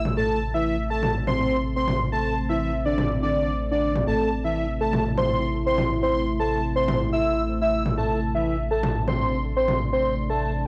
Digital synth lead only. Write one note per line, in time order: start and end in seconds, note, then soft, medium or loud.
0.17 0.39 A5 loud
0.54 0.76 E5 loud
0.90 1.12 A5 medium
1.27 1.56 C6 medium
1.76 1.98 C6 medium
2.12 2.34 A5 loud
2.49 2.71 E5 medium
2.85 3.07 D5 medium
3.22 3.51 D5 loud
3.71 3.93 D5 medium
4.07 4.29 A5 loud
4.44 4.66 E5 loud
4.81 5.02 A5 medium
5.18 5.46 C6 medium
5.66 5.88 C6 medium
6.03 6.24 C6 loud
6.39 6.61 A5 medium
6.76 6.98 C6 medium
7.13 7.41 E6 medium
7.61 7.83 E6 medium
7.98 8.19 A5 medium
8.35 8.56 E5 medium
8.71 8.93 A5 medium
9.08 9.37 C6 loud
9.56 9.78 C6 medium
9.93 10.15 C6 medium
10.30 10.51 A5 medium